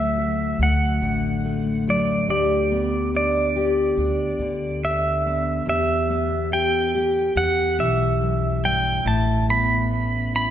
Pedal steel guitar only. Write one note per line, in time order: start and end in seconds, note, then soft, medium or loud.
0.00 0.62 E5 medium
0.63 1.84 F#5 medium
1.90 2.27 D5 medium
2.30 3.10 D5 medium
3.17 4.80 D5 medium
4.85 5.68 E5 medium
5.69 6.49 E5 medium
6.53 7.37 G5 medium
7.37 7.80 F#5 medium
7.80 8.66 E5 medium
8.65 9.08 G5 medium
9.08 9.46 A5 medium
9.50 10.35 B5 medium
10.36 10.51 B5 medium